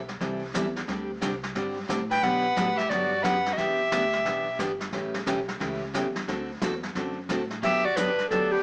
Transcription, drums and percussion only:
0.08 snare soft
0.21 brush sweep medium
0.21 kick soft
0.21 snare soft
0.54 kick soft
0.54 snare medium
0.54 hi-hat pedal medium
0.76 snare soft
0.88 brush sweep medium
0.88 kick soft
0.88 snare soft
1.22 kick soft
1.22 snare medium
1.22 hi-hat pedal medium
1.43 snare soft
1.55 brush sweep medium
1.55 kick soft
1.55 snare soft
1.89 kick soft
1.89 snare medium
1.89 hi-hat pedal medium
2.11 snare soft
2.23 brush sweep soft
2.23 kick soft
2.23 snare soft
2.57 kick soft
2.57 snare medium
2.57 hi-hat pedal medium
2.78 snare soft
2.90 brush sweep soft
2.90 kick soft
2.90 snare soft
3.24 kick soft
3.24 snare medium
3.24 hi-hat pedal medium
3.46 snare soft
3.58 brush sweep soft
3.58 kick soft
3.58 snare soft
3.92 kick soft
3.92 snare medium
3.92 hi-hat pedal medium
4.13 snare soft
4.25 brush sweep medium
4.25 kick soft
4.25 snare medium
4.59 kick soft
4.59 snare medium
4.59 hi-hat pedal medium
4.80 snare soft
4.93 brush sweep soft
4.93 kick soft
4.93 snare soft
5.14 snare medium
5.27 kick soft
5.27 snare medium
5.27 hi-hat pedal medium
5.48 snare soft
5.60 brush sweep medium
5.60 kick soft
5.60 snare medium
5.94 kick soft
5.94 snare medium
5.94 hi-hat pedal medium
6.16 snare medium
6.28 brush sweep soft
6.28 kick soft
6.28 snare soft
6.62 kick soft
6.62 snare medium
6.62 hi-hat pedal medium
6.83 snare soft
6.95 brush sweep medium
6.95 kick soft
6.95 snare soft
7.29 kick soft
7.29 snare medium
7.29 hi-hat pedal medium
7.50 snare soft
7.63 brush sweep medium
7.63 kick soft
7.63 snare soft
7.96 kick soft
7.96 snare medium
7.96 hi-hat pedal medium
8.18 snare soft
8.31 brush sweep medium
8.31 kick soft
8.31 snare soft

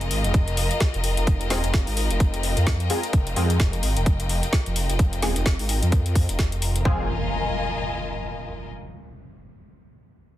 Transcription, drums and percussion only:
0.01 closed hi-hat soft
0.11 open hi-hat loud
0.24 closed hi-hat medium
0.34 kick loud
0.34 closed hi-hat medium
0.48 closed hi-hat soft
0.57 open hi-hat loud
0.71 closed hi-hat soft
0.80 kick loud
0.80 snare loud
0.80 closed hi-hat medium
0.94 closed hi-hat soft
1.04 open hi-hat loud
1.17 closed hi-hat medium
1.27 kick loud
1.27 closed hi-hat medium
1.41 closed hi-hat soft
1.50 snare medium
1.50 open hi-hat loud
1.64 closed hi-hat medium
1.74 kick loud
1.74 snare loud
1.74 closed hi-hat medium
1.87 open hi-hat medium
1.97 open hi-hat loud
2.11 closed hi-hat medium
2.20 kick loud
2.20 closed hi-hat medium
2.34 closed hi-hat soft
2.43 open hi-hat loud
2.57 closed hi-hat medium
2.67 kick loud
2.67 snare loud
2.67 closed hi-hat medium
2.80 closed hi-hat soft
2.90 open hi-hat loud
3.03 closed hi-hat medium
3.13 kick loud
3.13 closed hi-hat medium
3.27 closed hi-hat soft
3.36 open hi-hat loud
3.50 closed hi-hat medium
3.60 kick loud
3.60 snare loud
3.60 closed hi-hat medium
3.73 closed hi-hat soft
3.83 open hi-hat loud
3.97 closed hi-hat medium
4.06 kick loud
4.06 closed hi-hat medium
4.20 closed hi-hat soft
4.29 open hi-hat loud
4.43 closed hi-hat medium
4.53 kick loud
4.53 snare loud
4.53 closed hi-hat medium
4.66 closed hi-hat soft
4.76 open hi-hat loud
4.90 closed hi-hat medium
4.99 kick loud
4.99 closed hi-hat medium
5.13 closed hi-hat soft
5.22 snare medium
5.22 open hi-hat loud
5.36 closed hi-hat medium
5.46 kick loud
5.46 snare loud
5.46 closed hi-hat medium
5.59 open hi-hat medium
5.69 open hi-hat loud
5.83 closed hi-hat medium
5.92 kick loud
5.92 closed hi-hat medium
6.06 closed hi-hat soft
6.15 kick medium
6.15 open hi-hat loud
6.29 closed hi-hat medium
6.39 kick loud
6.39 snare loud
6.39 closed hi-hat medium
6.52 closed hi-hat soft
6.62 open hi-hat loud
6.76 closed hi-hat medium
6.85 kick loud

